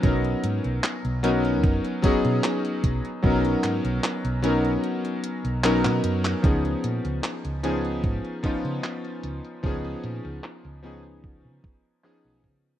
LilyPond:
<<
  \new Staff \with { instrumentName = "Electric grand piano" } { \time 4/4 \key cis \mixolydian \tempo 4 = 75 <fis b cis' dis' ais'>4. <fis b cis' dis' ais'>4 <fis b cis' dis' gis'>4. | <fis b cis' dis' ais'>4. <fis b cis' dis' ais'>4. <fis b cis' dis' ais'>4 | <eis b cis' dis' gis'>4. <eis b cis' dis' gis'>4 <eis b cis' dis' eis'>4. | <eis b cis' dis' gis'>4. <eis b cis' dis' gis'>4. <eis b cis' dis' gis'>4 | }
  \new Staff \with { instrumentName = "Fingered electric bass" } { \clef bass \time 4/4 \key cis \mixolydian b,,16 r16 gis,16 b,,16 r16 b,,8. fis,16 r8 b,16 r8 b,,16 r16 | b,,16 r16 gis,16 b,,16 r16 b,,8. r8. b,,8 b,16 fis,16 r16 | cis,16 r16 ais,16 cis,16 r16 cis,8. gis,16 r8 cis16 r8 cis,16 r16 | cis,16 r16 ais,16 cis,16 r16 cis,4 cis16 r8. b,,16 cis16 r16 | }
  \new DrumStaff \with { instrumentName = "Drums" } \drummode { \time 4/4 <hh bd>16 hh16 hh16 hh16 <hc hh>16 hh16 hh16 hh16 <hh bd>16 hh16 <hh bd>16 hh16 <hc hh>16 hh16 <hh bd>16 hh16 | <hh bd>16 hh16 <hc hh>16 hh16 <hc hh>16 hh16 hh16 hh16 hh16 hh16 hh16 hh16 <hc hh>16 <hc hh>16 hh16 <hc hh>16 | <hh bd>16 hh16 hh16 hh16 <hc hh>16 hh16 hh16 hh16 <hh bd>16 hh16 <hh bd>16 hh16 <hc hh>16 hh16 hh16 hh16 | <hh bd>16 hh16 hh16 hh16 <hc hh>16 hh16 hh16 hh16 <hh bd>16 hh16 <hh bd>16 hh16 hc8 bd8 | }
>>